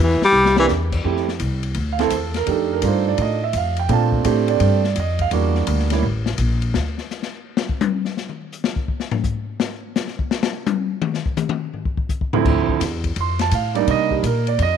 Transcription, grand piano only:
0.56 A#3 C4 D4 E4 G4
1.05 A3 C4 E4 G4
1.93 F5
2.00 A3 C4 E4 A4
2.05 C5
2.16 A4
2.37 A#4
2.47 A3 D4 D#4 G4
2.52 A4
2.73 A#4
2.83 A3 D4 D#4 F4
2.88 C5
3.08 D5
3.22 D#5
3.44 E5
3.57 F5
3.79 G5
3.89 A3 C4 D4 F4
3.93 A5
4.25 A3 C4 D4 G4
4.50 D5
5.00 D#5
5.21 F5
5.32 G3 A#3 D4 F#4
5.91 G3 A#3 C#4 E4
12.33 D2 F3 A3 C4 E4
13.21 C6
13.41 A5
13.55 F5
13.75 G3 A#3 D4 D#4 D5
13.91 D#5
14.11 G4
14.26 A#4
14.48 D5
14.62 D#5

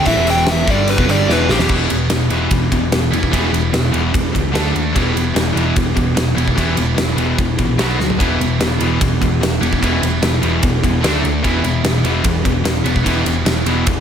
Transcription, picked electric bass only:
0.06 A1
0.17 E1
0.67 G1
0.98 E1
1.09 G1
1.28 E1
1.49 A#1
1.59 E1
1.69 E1
1.91 E1
2.11 E1
2.30 E1
2.51 E1
2.72 E1
2.91 E1
3.12 E1
3.33 E1
3.52 E1
3.73 E1
3.94 E1
4.15 E1
4.35 C#2
4.55 D2
4.75 D#2
4.95 E1
5.15 E1
5.35 E1
5.55 E1
5.76 E1
5.97 E1
6.16 E1
6.36 E1
6.58 E1
6.78 E1
6.97 E1
7.17 E1
7.38 E1
7.58 A#1
7.78 B1
7.99 D2
8.20 E1
8.39 E1
8.60 E1
8.81 E1
9.01 E1
9.21 E1
9.41 E1
9.61 E1
9.82 E1
10.02 E1
10.22 E1
10.43 E1
10.62 E1
10.84 E1
11.04 D2
11.24 D2
11.44 E1
11.64 E1
11.84 E1
12.04 E1
12.24 E1
12.45 E1
12.64 E1
12.85 E1
13.06 E1
13.25 E1
13.46 E1
13.66 E1
13.87 E1

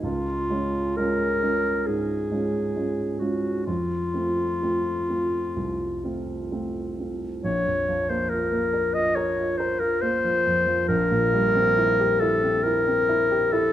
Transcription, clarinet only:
0.02 F4
0.97 A#4
1.87 G#4
3.20 F#4
3.66 F4
7.44 C#5
8.09 C5
8.30 A#4
8.94 D#5
9.16 C#5
9.58 C5
9.80 A#4
10.02 C5
10.88 A#4
12.20 A4
12.64 A#4
13.52 A4

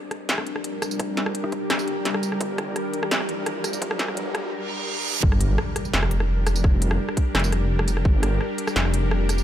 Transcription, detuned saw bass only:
0.29 F1
1.70 F1
2.41 G1
3.11 F1
4.17 G1
5.23 G1
5.94 F1
7.34 F1
8.05 G1
8.76 F1

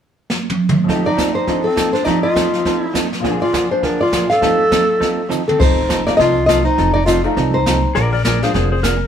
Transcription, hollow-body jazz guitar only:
0.88 F3 C4 D#4 A4
1.17 F3 C4 D#4 A4
1.47 F3 C4 D#4 A4
1.76 F3 C4 D#4 A4
2.06 F3 C4 D#4 A4
2.35 F3 C4 D#4 A4
2.65 F3 C4 D#4 A4
2.94 F3 C4 D#4 A4
3.23 A#2 D3 F3 A#3 D4 G#4
3.53 A#2 D3 F3 A#3 D4 G#4
3.83 A#2 D3 F3 A#3 D4 G#4
4.12 A#2 D3 F3 A#3 D4 G#4
4.42 F3 C4 D#4 A4
4.71 F3 C4 D#4 A4
5.00 F3 C4 D#4 A4
5.29 F3 C4 D#4 A4
5.59 F3 C4 D#4 A4
5.89 F3 C4 D#4 A4
6.18 F3 C4 D#4 A4
6.48 F3 C4 D#4 A4
6.78 F3 C4 D#4 A4
7.08 F3 C4 D#4 A4
7.37 F3 C4 D#4 A4
7.66 F3 C4 D#4 A4
7.95 D3 F3 A#3 D4 G#4
8.26 D3 F3 A#3 D4 G#4
8.54 D3 F3 A#3 D4 G#4
8.83 D3 F3 A#3 D4 G#4

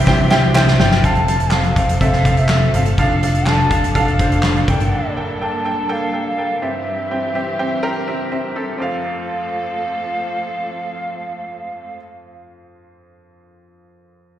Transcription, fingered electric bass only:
0.07 C2
0.79 G1
1.04 F1
1.76 F1
2.01 F1
2.73 G1
2.98 F1
3.71 F1
3.95 F1
4.68 G1

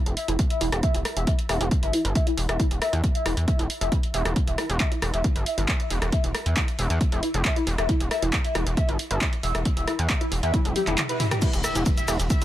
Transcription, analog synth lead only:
0.17 E5
0.28 E4
0.50 E5
0.61 E4
0.83 E5
0.94 E4
1.17 E5
1.27 E4
1.49 E5
1.61 E4
1.83 E5
1.93 E4
2.15 E5
2.27 E4
2.49 E5
2.60 E4
2.82 E5
2.93 E4
3.15 E5
3.26 E4
3.48 E5
3.59 E4
3.81 E5
3.92 E4
4.14 E5
4.26 E4
4.47 E5
4.58 E4
4.80 E5
4.92 E4
5.14 E5
5.24 E4
5.46 E5
5.58 E4
5.80 E5
5.90 E4
6.12 E5
6.24 E4
6.46 E5
6.57 E4
6.79 E5
6.90 E4
7.12 E5
7.23 E4
7.45 E5
7.56 E4
7.78 E5
7.89 E4
8.11 E5
8.22 E4
8.45 E5
8.55 E4
8.77 E5
8.89 E4
9.11 E5
9.21 E4
9.43 E5
9.55 E4
9.77 E5
9.88 E4
10.10 E5
10.21 E4
10.43 E5
10.54 E4
10.76 G4
10.87 E4
11.09 B4
11.20 E4
11.31 G4
11.42 E4
11.64 E5
11.75 E4
11.97 E5
12.08 E4
12.30 E5

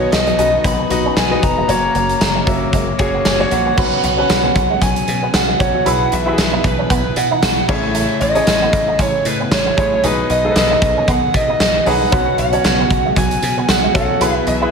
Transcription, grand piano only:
Already playing: B2 B3 D#4 F#4 D#5
0.38 B3 D#4 F#4 D#5
0.90 B3 D#4 F#4 D#5
1.30 B3 D#4 F#4 D#5
1.68 A#3 C#4 F#4 C#5
2.46 A#3 C#4 F#4 E5
2.99 A#3 C#4 F#4 G#4
3.39 A#3 C#4 F#4 C#5
3.77 B2 C#4 F#4 B4
4.17 C#4 F#4 B4
5.59 C#4 F#4 C#5
5.85 B2 E4 G#4 B4
6.26 E4 F#4 B4
6.33 G#4
7.68 A2 A3 C#4 E4 G#4 C#5
8.35 A3 C#4 E4 G#4 C#5
9.77 A3 C#4 E4 G#4 C#5
10.03 B2 D#4 G#4 B4
10.44 D#4 G#4 A4
10.51 B4
11.86 D#4 G#4 B4
12.12 B2 C#4 F#4 B4
12.52 C#4 F#4 C#5
13.94 C#4 F#4 A4
14.20 B2 E4 G#4 B4
14.61 E4 G#4 B4

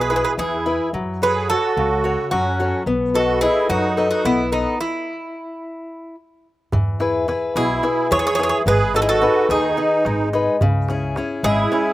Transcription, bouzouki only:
0.01 B4
0.10 B4
0.16 B4
0.24 B4
0.39 G#4
1.23 B4
1.50 A4
2.31 F#4
3.15 A4
3.41 G#4
3.70 F#4
4.11 F#4
4.25 E4
4.53 D#4
4.81 E4
7.57 G#4
8.12 C#5
8.19 C#5
8.27 C#5
8.35 C#5
8.43 C#5
8.49 C#5
8.68 B4
8.96 A4
9.02 G#4
9.09 A4
9.51 G#4
11.44 G#4

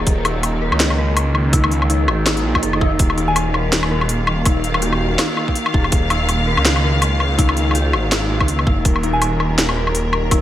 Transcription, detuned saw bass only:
0.07 D#1
0.36 D#1
0.72 C#2
2.08 G#1
2.45 A#1
2.63 F1
3.00 D#1
3.73 D#1
4.46 D#1
5.74 D#1
5.92 D#1
6.21 D#1
6.58 C#2
7.94 G#1
8.41 C#2
8.67 F#1
8.77 D#1
8.85 D#1
9.58 D#1
10.31 D#1

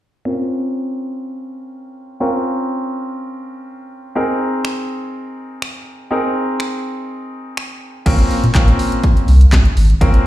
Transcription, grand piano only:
0.25 C4 C#4 F4 A#4
2.20 C4 C#4 F4 A#4
4.15 C4 D#4 G#4 A#4
6.11 C4 D#4 G#4 A#4
8.06 A#3 C4 C#4 F4 A#4
8.55 A#3 C4 C#4 F4 A#4
10.01 A#3 C4 C#4 F4 A#4

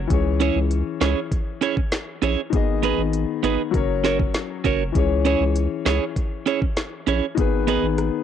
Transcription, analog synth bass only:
0.10 C#2
0.56 C#2
1.01 C#2
2.22 A#1
2.53 G#1
2.98 G#1
3.43 G#1
3.74 F#1
4.65 F#1
4.95 C#2
5.40 C#2
5.86 C#2
7.07 A#1
7.38 G#1
7.83 G#1

